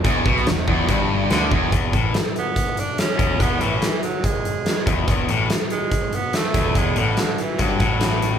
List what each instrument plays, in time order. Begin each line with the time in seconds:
0.04 picked electric bass E1, overdriven electric guitar E2, kick, closed hi-hat
0.26 picked electric bass B1, overdriven electric guitar B2, kick
0.37 snare
0.47 picked electric bass E1, overdriven electric guitar E2, snare, closed hi-hat
0.68 picked electric bass E1, overdriven electric guitar E2, kick
0.89 picked electric bass G1, overdriven electric guitar G2, kick, closed hi-hat
1.30 picked electric bass D2, overdriven electric guitar D3, snare, closed hi-hat
1.51 picked electric bass E1, overdriven electric guitar E2, kick
1.72 picked electric bass E1, overdriven electric guitar E2, kick, closed hi-hat
1.93 picked electric bass A1, overdriven electric guitar A2, kick, closed hi-hat
2.14 snare, closed hi-hat
2.36 tenor saxophone B3, closed hi-hat
2.56 kick, closed hi-hat
2.77 tenor saxophone D4, closed hi-hat
2.98 tenor saxophone C#4, snare, closed hi-hat
3.19 picked electric bass E1, overdriven electric guitar E2, kick, closed hi-hat
3.40 picked electric bass E1, overdriven electric guitar E2, tenor saxophone B3, kick, closed hi-hat
3.61 picked electric bass A1, overdriven electric guitar A2, tenor saxophone E3, closed hi-hat
3.82 snare, closed hi-hat
4.03 tenor saxophone F#3, closed hi-hat
4.24 tenor saxophone G#3, kick, closed hi-hat
4.45 closed hi-hat
4.66 snare, closed hi-hat
4.87 picked electric bass E1, overdriven electric guitar E2, kick, closed hi-hat
5.08 picked electric bass E1, overdriven electric guitar E2, kick, closed hi-hat
5.29 picked electric bass A1, overdriven electric guitar A2, closed hi-hat
5.50 snare, closed hi-hat
5.70 tenor saxophone G#3, closed hi-hat
5.92 kick, closed hi-hat
6.13 tenor saxophone B3, closed hi-hat
6.33 tenor saxophone A3, snare, closed hi-hat
6.54 picked electric bass E1, overdriven electric guitar E2, kick, closed hi-hat
6.75 picked electric bass E1, overdriven electric guitar E2, tenor saxophone G#3, kick, closed hi-hat
6.96 picked electric bass A1, overdriven electric guitar A2, tenor saxophone D3, closed hi-hat
7.17 snare, closed hi-hat
7.38 tenor saxophone E3, closed hi-hat
7.59 picked electric bass G1, overdriven electric guitar G2, tenor saxophone F#3, kick, closed hi-hat
7.80 picked electric bass A1, overdriven electric guitar A2, kick, closed hi-hat
8.01 snare, closed hi-hat
8.22 closed hi-hat